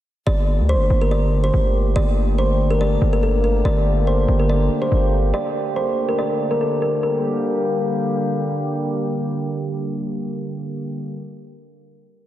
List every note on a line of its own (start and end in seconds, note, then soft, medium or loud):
0.27 0.61 G1 loud
0.27 6.99 D3 medium
0.27 6.99 A3 medium
0.27 6.99 A#3 medium
0.27 3.62 G4 medium
0.27 0.66 D5 medium
0.59 0.76 D2 loud
0.69 1.00 C5 medium
0.75 0.90 G1 loud
0.90 1.51 G1 loud
1.01 1.11 A#4 medium
1.11 1.42 D5 medium
1.44 1.93 C5 medium
1.54 1.94 G1 loud
1.96 2.98 G1 loud
1.96 2.36 D5 loud
2.38 2.69 C5 medium
2.71 2.80 A#4 medium
2.81 3.11 D5 medium
3.02 3.62 G1 loud
3.13 3.22 A#4 medium
3.23 3.42 A4 medium
3.44 3.63 A#4 medium
3.65 4.26 G1 loud
3.65 7.00 G4 medium
3.65 4.05 D5 loud
4.07 4.38 C5 medium
4.28 4.69 G1 loud
4.39 4.49 A#4 medium
4.50 4.80 D5 medium
4.82 5.31 C5 medium
4.92 5.32 G1 loud
5.34 5.74 D5 loud
5.76 6.07 C5 medium
6.09 6.18 A#4 medium
6.19 6.49 D5 medium
6.51 6.60 A#4 medium
6.61 6.80 A4 medium
6.82 7.01 A#4 medium
7.03 11.17 D3 medium
7.03 11.17 G3 medium
7.03 11.17 A#3 medium
7.03 11.17 G4 medium
7.03 8.26 A#4 medium